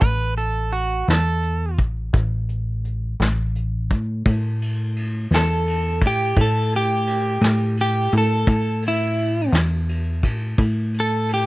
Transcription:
Already playing: clean electric guitar A4
0.01 analog synth bass A1, clean electric guitar B4, kick, closed hi-hat
0.38 clean electric guitar A4, closed hi-hat
0.73 clean electric guitar F#4, closed hi-hat
1.08 analog synth bass E2, clean electric guitar A4, snare, closed hi-hat
1.43 closed hi-hat
1.78 analog synth bass A1, kick, closed hi-hat
2.13 analog synth bass A1, kick, closed hi-hat
2.49 closed hi-hat
2.84 closed hi-hat
3.19 analog synth bass A1, snare, closed hi-hat
3.55 closed hi-hat
3.91 analog synth bass A2, kick, closed hi-hat
4.26 analog synth bass A2, kick, ride
4.62 ride
4.96 ride
5.31 analog synth bass E2, snare, ride
5.36 clean electric guitar A4
5.67 ride
6.02 analog synth bass A2, kick, ride
6.07 clean electric guitar G4
6.37 analog synth bass A2, kick, ride
6.41 clean electric guitar A4
6.72 ride
6.76 clean electric guitar G4
7.07 ride
7.41 analog synth bass A2, snare, ride
7.77 ride
7.81 clean electric guitar G4
8.12 analog synth bass A2, ride
8.18 clean electric guitar A4
8.47 analog synth bass A2, kick, ride
8.82 ride
8.88 clean electric guitar E4
9.18 ride
9.52 analog synth bass E2, snare, ride
9.89 ride
10.23 analog synth bass A2, kick, ride
10.58 analog synth bass A2, kick, ride
10.94 ride
11.00 clean electric guitar A4
11.28 ride
11.34 clean electric guitar G4

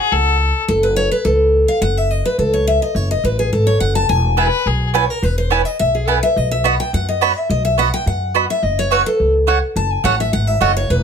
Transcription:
Already playing: steel-string acoustic guitar F#5
0.00 fiddle G#4
0.12 upright bass C#2, fiddle A4
0.68 upright bass F#1, steel-string acoustic guitar A4
0.83 steel-string acoustic guitar B4
0.96 steel-string acoustic guitar C#5
1.11 steel-string acoustic guitar B4
1.25 upright bass C#2, steel-string acoustic guitar A4
1.68 steel-string acoustic guitar F5
1.81 upright bass F#1, steel-string acoustic guitar F#5
1.97 steel-string acoustic guitar E5
2.11 steel-string acoustic guitar D#5
2.25 steel-string acoustic guitar B4
2.38 upright bass C#2, steel-string acoustic guitar A4
2.54 steel-string acoustic guitar C#5
2.67 steel-string acoustic guitar E5
2.82 steel-string acoustic guitar D#5
2.95 upright bass F#1, steel-string acoustic guitar C#5
3.11 steel-string acoustic guitar D#5
3.24 upright bass A1, steel-string acoustic guitar B4
3.39 steel-string acoustic guitar G#4
3.52 upright bass G#1, steel-string acoustic guitar A4
3.67 steel-string acoustic guitar C#5
3.80 upright bass F#1, steel-string acoustic guitar F#5
3.95 steel-string acoustic guitar A5
4.09 upright bass E1, steel-string acoustic guitar G#5
4.37 mandolin B3 E4 B4 G#5, fiddle G#4
4.46 fiddle B4
4.66 upright bass B1, fiddle G#4
4.94 mandolin B3 E4 B4 G#5, steel-string acoustic guitar C#5
5.10 steel-string acoustic guitar A#4
5.22 upright bass E1, steel-string acoustic guitar B4
5.38 steel-string acoustic guitar C5
5.50 mandolin B3 E4 B4 G#5, steel-string acoustic guitar C#5
5.65 steel-string acoustic guitar D#5
5.79 upright bass B1, steel-string acoustic guitar E5
5.95 steel-string acoustic guitar G#4
6.07 mandolin B3 E4 B4 G#5, steel-string acoustic guitar B4
6.23 steel-string acoustic guitar E5
6.36 upright bass B1, steel-string acoustic guitar D#5
6.51 steel-string acoustic guitar E5
6.64 mandolin B3 F#4 D#5 B5, steel-string acoustic guitar F#5
6.80 steel-string acoustic guitar G5
6.93 upright bass F#2, steel-string acoustic guitar F#5
7.09 steel-string acoustic guitar D#5
7.21 mandolin B3 F#4 D#5 B5, steel-string acoustic guitar C#5
7.37 steel-string acoustic guitar E5
7.49 upright bass B1, steel-string acoustic guitar D#5
7.65 steel-string acoustic guitar E5
7.78 mandolin B3 F#4 D#5 B5, steel-string acoustic guitar F#5
7.94 steel-string acoustic guitar G5
8.06 upright bass F#2, steel-string acoustic guitar F#5
8.35 mandolin B3 F#4 D#5 B5
8.50 steel-string acoustic guitar E5
8.62 upright bass F#1, steel-string acoustic guitar D#5
8.79 steel-string acoustic guitar C#5
8.91 mandolin A3 F#4 C#5 F#5, steel-string acoustic guitar B4
9.06 steel-string acoustic guitar A4
9.20 upright bass C#2
9.47 mandolin A3 F#4 C#5 F#5
9.76 upright bass F#1, steel-string acoustic guitar A5
9.92 steel-string acoustic guitar G#5
10.04 upright bass A1, mandolin A3 F#4 C#5 F#5, steel-string acoustic guitar F#5
10.20 steel-string acoustic guitar E5
10.33 upright bass G#1, steel-string acoustic guitar F#5
10.47 steel-string acoustic guitar E5
10.61 upright bass F#1, mandolin A3 F#4 C#5 F#5, steel-string acoustic guitar D#5
10.77 steel-string acoustic guitar C#5
10.90 upright bass E1, steel-string acoustic guitar B4

